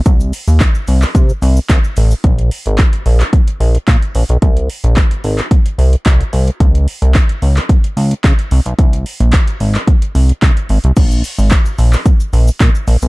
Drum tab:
CC |----------------|----------------|----------------|----------------|
HH |x-o-x-o-x-o-x-o-|xxoxxxoxxxoxxxox|xxoxxxoxxxoxxxox|xxoxxxoxxxoxxxox|
SH |xxxxxxxxxxxxxxxx|----------------|----------------|----------------|
CP |----x--x----x---|----x--x----x---|----x--x----x---|----x--x----x---|
BD |o---o---o---o---|o---o---o---o---|o---o---o---o---|o---o---o---o---|

CC |----------------|x---------------|
HH |xxoxxxoxxxoxxxox|x-o-x-o-x-o-x-o-|
SH |----------------|xxxxxxxxxxxxxxxx|
CP |----x--x----x---|----x--x----x---|
BD |o---o---o---o---|o---o---o---o---|